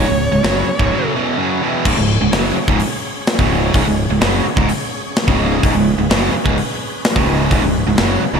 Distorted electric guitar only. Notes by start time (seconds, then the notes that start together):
0.08 C#2 G#2
0.32 C#2 G#2
0.43 F#2 C#3 F#3
0.67 muted distorted electric guitar stroke
0.79 C#2 G#2
0.91 F#2 C#3 F#3
1.15 E2 B2 E3
1.38 F#2 C#3 F#3
1.62 E2 B2 E3
1.86 C#2 G#2
1.98 C#2 G#2
2.21 C#2 G#2
2.32 F#2 C#3 F#3
2.57 muted distorted electric guitar stroke
2.68 C#2 G#2
3.39 C#2 G#2 C#3
3.74 C#2 G#2
3.87 C#2 G#2
4.10 C#2 G#2
4.21 F#2 C#3 F#3
4.45 muted distorted electric guitar stroke
4.56 C#2 G#2
5.27 C#2 G#2 C#3
5.63 C#2 G#2
5.75 C#2 G#2
5.98 C#2 G#2
6.10 F#2 C#3 F#3
6.33 muted distorted electric guitar stroke
6.44 C#2 G#2
7.16 C#2 G#2 C#3
7.52 C#2 G#2
7.64 C#2 G#2
7.87 C#2 G#2
7.99 F#2 C#3 F#3
8.22 muted distorted electric guitar stroke
8.34 C#2 G#2